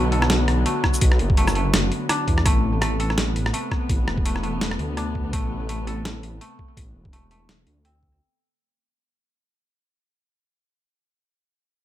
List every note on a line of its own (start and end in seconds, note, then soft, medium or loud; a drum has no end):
0.00 0.47 B1 loud
0.00 2.42 D3 medium
0.00 2.42 F#3 medium
0.00 0.65 A3 medium
0.00 2.42 B3 medium
0.00 1.65 D4 medium
0.12 2.02 A4 medium
0.12 closed hi-hat soft
0.22 cross-stick medium
0.30 snare loud
0.30 closed hi-hat medium
0.48 0.65 B1 medium
0.48 cross-stick medium
0.48 closed hi-hat soft
0.66 1.37 A3 medium
0.66 closed hi-hat medium
0.84 kick medium
0.84 cross-stick medium
0.94 shaker medium
1.01 1.18 B1 loud
1.01 kick loud
1.01 closed hi-hat medium
1.12 cross-stick medium
1.19 1.91 F#1 medium
1.19 closed hi-hat soft
1.30 kick loud
1.37 1.55 A3 medium
1.37 closed hi-hat medium
1.48 cross-stick medium
1.48 shaker soft
1.55 2.45 A3 medium
1.55 closed hi-hat soft
1.74 cross-stick medium
1.74 snare loud
1.74 closed hi-hat medium
1.92 closed hi-hat soft
2.09 4.52 D4 medium
2.09 cross-stick medium
2.09 closed hi-hat medium
2.28 2.44 E2 medium
2.28 kick medium
2.28 closed hi-hat soft
2.38 cross-stick medium
2.45 3.34 A1 medium
2.45 8.16 C3 medium
2.45 2.81 A3 medium
2.45 8.16 A3 medium
2.45 8.16 B3 medium
2.45 kick loud
2.45 cross-stick medium
2.45 closed hi-hat medium
2.81 3.53 A3 medium
2.81 cross-stick medium
2.81 closed hi-hat medium
3.00 4.90 A4 medium
3.00 closed hi-hat soft
3.10 cross-stick medium
3.18 snare loud
3.18 closed hi-hat medium
3.36 3.52 A1 medium
3.36 closed hi-hat soft
3.46 cross-stick medium
3.53 4.25 A3 medium
3.53 closed hi-hat medium
3.71 kick medium
3.71 cross-stick medium
3.89 4.06 A1 loud
3.89 kick loud
3.89 closed hi-hat medium
4.07 4.78 E1 medium
4.07 cross-stick medium
4.18 kick loud
4.25 4.43 A3 medium
4.25 closed hi-hat medium
4.36 cross-stick soft
4.43 5.33 A3 medium
4.43 closed hi-hat soft
4.61 snare loud
4.61 closed hi-hat medium
4.71 cross-stick medium
4.79 5.32 D2 loud
4.79 closed hi-hat soft
4.97 7.40 D4 medium
4.97 cross-stick soft
4.97 closed hi-hat medium
5.15 kick medium
5.33 6.22 A1 medium
5.33 5.69 A3 medium
5.33 kick loud
5.33 closed hi-hat medium
5.69 6.41 A3 medium
5.69 closed hi-hat medium
5.87 7.77 A4 medium
5.87 closed hi-hat soft
6.05 snare loud
6.05 closed hi-hat medium
6.23 6.40 A1 medium
6.23 closed hi-hat soft
6.41 7.12 A3 medium
6.41 closed hi-hat medium
6.59 kick medium
6.77 6.94 A1 medium
6.77 kick loud
6.77 closed hi-hat medium
6.95 7.66 E1 medium
7.05 kick loud
7.13 7.30 A3 medium
7.13 closed hi-hat medium
7.31 10.19 A3 medium
7.31 closed hi-hat soft
7.49 snare loud
7.49 closed hi-hat medium
7.67 8.20 D2 medium
7.67 closed hi-hat soft
7.85 10.45 C4 medium
7.85 closed hi-hat medium
8.03 kick medium